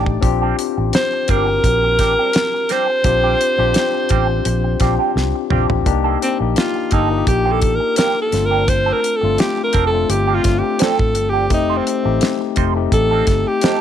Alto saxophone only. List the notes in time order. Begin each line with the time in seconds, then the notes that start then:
Already playing: D5
0.95 C5
1.30 A#4
2.72 C5
6.23 C4
6.57 F4
6.93 D#4
7.28 G4
7.52 A4
7.75 A#4
7.98 A#4
8.22 A4
8.45 A#4
8.69 C5
8.93 A#4
9.17 A4
9.40 G4
9.64 A#4
9.87 A4
10.10 G4
10.35 F4
10.59 G4
10.82 A4
11.30 G4
11.53 D#4
11.77 C4
12.94 A4
13.48 G4